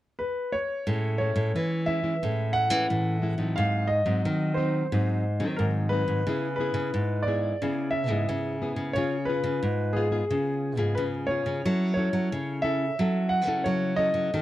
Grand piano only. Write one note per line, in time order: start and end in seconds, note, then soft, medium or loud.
0.19 0.54 B4 medium
0.52 1.17 C#5 medium
1.18 1.83 C#5 medium
1.86 2.57 E5 medium
2.53 3.59 F#5 loud
3.56 3.88 F5 medium
3.88 4.59 D#5 medium
4.54 5.61 C5 medium
5.57 5.64 A#4 medium
5.89 6.54 B4 medium
6.56 7.28 B4 medium
7.23 7.95 D5 medium
7.91 8.97 E5 medium
8.93 9.29 C#5 medium
9.25 9.97 B4 medium
9.93 10.99 G#4 medium
10.95 11.03 B4 medium
11.27 11.92 C#5 medium
11.94 12.65 C#5 medium
12.62 13.33 E5 medium
13.29 13.66 F#5 medium
13.64 14.00 C#5 medium
13.96 14.42 D#5 loud